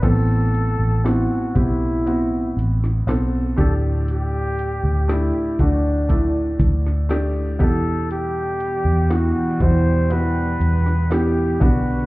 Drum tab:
CC |x---------------|----------------|----------------|
HH |x-x-x-x-x-x-x-x-|x-x-x-x-x-x-x-x-|x-x-x-x-x-x-x-x-|
SD |----o------oo---|----o------oo---|----o------oo---|
BD |o-----o-------o-|------o-o-o---o-|------o-------o-|